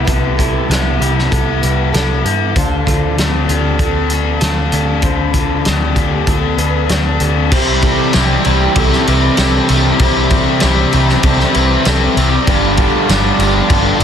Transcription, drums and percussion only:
0.07 kick, closed hi-hat
0.39 kick, closed hi-hat
0.71 snare, closed hi-hat
1.02 closed hi-hat
1.19 snare
1.32 kick, closed hi-hat
1.63 closed hi-hat
1.94 snare, closed hi-hat
2.25 closed hi-hat
2.56 kick, closed hi-hat
2.87 kick, closed hi-hat
3.18 snare, closed hi-hat
3.49 closed hi-hat
3.79 kick, closed hi-hat
4.10 closed hi-hat
4.41 snare, closed hi-hat
4.72 closed hi-hat
5.02 kick, closed hi-hat
5.34 kick, closed hi-hat
5.65 snare, closed hi-hat
5.96 kick, closed hi-hat
6.27 kick, closed hi-hat
6.58 closed hi-hat
6.89 snare, closed hi-hat
7.20 closed hi-hat
7.52 kick, crash
7.82 kick, crash
8.13 snare, tambourine, crash
8.45 crash
8.76 kick, crash
8.93 snare
9.07 crash
9.37 snare, tambourine, crash
9.69 crash
9.99 kick, crash
10.30 kick, crash
10.60 snare, tambourine, crash
10.93 crash
11.09 snare
11.23 kick, crash
11.40 snare
11.54 crash
11.85 snare, tambourine, crash
12.17 crash
12.47 kick, crash
12.77 kick, crash
13.09 snare, tambourine, crash
13.40 crash
13.70 kick, crash
14.00 crash

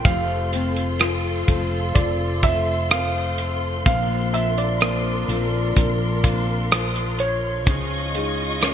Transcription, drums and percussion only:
0.05 kick, closed hi-hat
0.53 closed hi-hat
0.76 closed hi-hat
1.00 cross-stick, closed hi-hat
1.48 kick, closed hi-hat
1.95 kick, closed hi-hat
2.43 kick, closed hi-hat
2.91 cross-stick, closed hi-hat
3.38 closed hi-hat
3.86 kick, closed hi-hat
4.34 closed hi-hat
4.58 closed hi-hat
4.81 cross-stick, closed hi-hat
5.29 closed hi-hat
5.76 kick, closed hi-hat
6.24 kick, closed hi-hat
6.72 cross-stick, closed hi-hat
6.96 closed hi-hat
7.19 closed hi-hat
7.67 kick, closed hi-hat
8.15 closed hi-hat
8.61 cross-stick, closed hi-hat

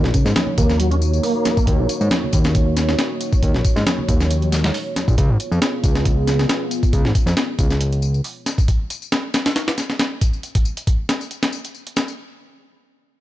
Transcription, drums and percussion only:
0.04 snare
0.14 kick, closed hi-hat, tambourine
0.26 snare, tambourine
0.36 snare, closed hi-hat, tambourine, high conga
0.47 low conga
0.58 kick, closed hi-hat, tambourine, low conga
0.69 snare, tambourine, high conga
0.80 closed hi-hat, tambourine
0.91 closed hi-hat, high conga
1.02 tambourine
1.13 tambourine
1.23 open hi-hat, tambourine
1.45 snare, closed hi-hat, tambourine, high conga
1.57 kick, tambourine
1.67 kick, closed hi-hat
1.89 closed hi-hat, tambourine
2.01 tambourine
2.11 snare, closed hi-hat, tambourine, high conga
2.24 low conga
2.33 kick, closed hi-hat, tambourine, low conga
2.44 snare, tambourine
2.55 kick, closed hi-hat, tambourine
2.77 snare, closed hi-hat, tambourine
2.89 snare, tambourine
2.99 snare, closed hi-hat, tambourine
3.21 closed hi-hat, tambourine
3.32 kick, tambourine
3.42 kick, closed hi-hat, tambourine
3.55 snare
3.65 kick, closed hi-hat, tambourine
3.77 snare, tambourine
3.86 snare, closed hi-hat, tambourine, high conga
3.98 low conga
4.08 kick, closed hi-hat, tambourine, low conga
4.20 snare, tambourine, high conga
4.31 closed hi-hat, tambourine
4.42 closed hi-hat, high conga
4.52 snare, closed hi-hat, tambourine
4.64 snare, tambourine
4.74 open hi-hat, tambourine
4.96 snare, closed hi-hat, tambourine, high conga
5.08 kick, tambourine
5.18 kick, closed hi-hat, tambourine
5.40 closed hi-hat, tambourine
5.52 tambourine
5.62 snare, closed hi-hat, tambourine
5.84 kick, closed hi-hat, tambourine
5.95 snare, tambourine
6.05 kick, closed hi-hat, tambourine
6.27 snare, closed hi-hat, tambourine
6.39 snare, tambourine
6.49 snare, closed hi-hat, tambourine
6.71 closed hi-hat, tambourine
6.83 kick, tambourine
6.93 kick, closed hi-hat, tambourine
7.05 snare
7.15 kick, closed hi-hat, tambourine
7.27 snare, tambourine
7.37 snare, closed hi-hat, tambourine
7.59 kick, closed hi-hat, tambourine
7.70 snare, tambourine
7.80 closed hi-hat, tambourine
7.93 closed hi-hat
8.02 tambourine
8.14 tambourine
8.24 open hi-hat, tambourine
8.46 snare, closed hi-hat, tambourine
8.58 kick, tambourine
8.68 kick, closed hi-hat, tambourine
8.90 closed hi-hat, tambourine
9.02 tambourine
9.12 snare, closed hi-hat, tambourine
9.34 snare, closed hi-hat, tambourine
9.46 snare, closed hi-hat, tambourine
9.56 snare, closed hi-hat, tambourine
9.68 snare, closed hi-hat
9.78 snare, closed hi-hat, tambourine
9.90 snare, tambourine
9.99 snare, closed hi-hat, tambourine
10.21 kick, closed hi-hat, tambourine
10.33 tambourine
10.43 closed hi-hat, tambourine
10.55 kick, closed hi-hat
10.65 tambourine
10.77 closed hi-hat, tambourine
10.87 kick, closed hi-hat, tambourine
11.09 snare, closed hi-hat, tambourine
11.21 tambourine
11.31 closed hi-hat, tambourine
11.43 snare, closed hi-hat
11.53 tambourine
11.64 closed hi-hat, tambourine
11.75 tambourine
11.87 closed hi-hat
11.96 snare, closed hi-hat, tambourine
12.08 tambourine

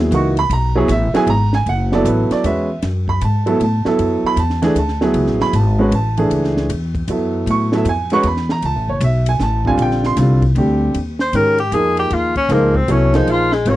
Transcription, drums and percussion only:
0.12 hi-hat pedal, ride
0.37 ride
0.51 ride
0.89 hi-hat pedal, ride
1.15 snare, ride
1.27 ride
1.53 snare
1.66 ride
1.92 snare
2.05 hi-hat pedal, ride
2.31 snare, ride
2.44 hi-hat pedal, ride
2.82 snare, ride
3.08 kick
3.21 hi-hat pedal, ride
3.47 ride
3.61 ride
3.85 snare
3.99 ride
4.37 hi-hat pedal, ride
4.50 snare
4.62 snare, ride
4.76 hi-hat pedal, ride
4.88 snare
5.01 snare
5.14 ride
5.27 snare
5.40 snare
5.53 hi-hat pedal, ride
5.92 ride
6.17 ride
6.31 ride
6.44 snare
6.57 snare
6.70 hi-hat pedal, ride
6.95 kick, ride
7.08 hi-hat pedal, ride
7.47 ride
7.72 snare
7.85 hi-hat pedal, ride
8.10 ride
8.23 ride
8.37 snare
8.49 snare
8.62 ride
9.01 hi-hat pedal, ride
9.26 ride
9.40 snare, hi-hat pedal
9.65 kick
9.79 ride
9.91 snare
10.04 snare
10.17 snare, hi-hat pedal, ride
10.42 kick, ride
10.56 ride
10.94 ride
11.19 snare
11.33 hi-hat pedal, ride
11.58 ride
11.72 hi-hat pedal, ride
11.97 ride
12.10 ride
12.36 kick, ride
12.50 snare, ride
12.75 kick
12.88 hi-hat pedal, ride
13.14 snare, ride
13.27 ride
13.52 snare
13.66 hi-hat pedal, ride

